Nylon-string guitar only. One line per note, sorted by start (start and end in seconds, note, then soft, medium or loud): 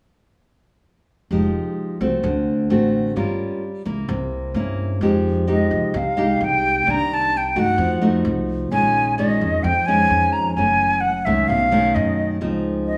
1.31 2.22 F3 soft
1.31 1.97 G#3 soft
1.31 1.97 D#4 soft
1.31 1.98 G4 medium
2.01 2.67 A3 medium
2.01 2.67 C4 medium
2.01 2.67 F#4 medium
2.23 3.14 D3 medium
2.70 3.13 A3 medium
2.70 3.13 C4 soft
2.70 3.13 F#4 medium
3.16 3.85 G3 soft
3.16 3.62 C#4 soft
3.16 3.63 F4 medium
3.16 3.63 A#4 medium
3.85 4.51 A#3 medium
3.85 4.52 E4 medium
4.08 4.99 C3 medium
4.55 4.98 A#3 soft
4.55 4.98 C#4 soft
4.55 4.99 E4 soft
5.02 5.92 F3 medium
5.02 5.44 G#3 soft
5.02 5.45 D#4 medium
5.02 5.45 G4 medium
5.47 5.94 G#3 medium
5.47 5.94 D#4 soft
5.47 5.94 G4 medium
5.94 6.84 C3 medium
6.17 6.83 G#3 medium
6.17 6.83 D#4 medium
6.17 6.83 G4 medium
6.86 7.76 C3 soft
6.86 7.33 D#3 soft
6.86 7.33 A#3 soft
6.86 7.33 D4 medium
7.56 7.98 A3 medium
7.56 7.99 D#4 medium
7.56 7.99 F#4 medium
7.78 8.69 F3 medium
8.01 8.67 A3 medium
8.01 8.68 D#4 medium
8.01 8.68 F#4 medium
8.72 9.62 A#2 soft
8.72 9.14 D#3 soft
8.72 9.14 G#3 soft
8.72 9.14 C#4 medium
9.18 9.64 D#3 medium
9.18 9.64 G#3 medium
9.18 9.64 C#4 medium
9.64 10.54 F2 medium
9.88 10.53 D#3 medium
9.88 10.53 G#3 medium
9.88 10.53 C#4 medium
10.57 11.47 F#2 soft
10.57 11.03 E3 medium
10.57 11.03 A3 soft
10.57 11.03 C#4 medium
11.26 11.68 D#3 medium
11.26 11.69 A3 medium
11.26 11.69 C#4 medium
11.49 12.39 B2 medium
11.71 12.37 D#3 medium
11.71 12.38 A3 medium
11.71 12.38 C#4 medium
12.41 12.97 C#3 soft
12.41 12.97 F3 soft
12.41 12.97 C4 soft
12.41 12.97 D#4 medium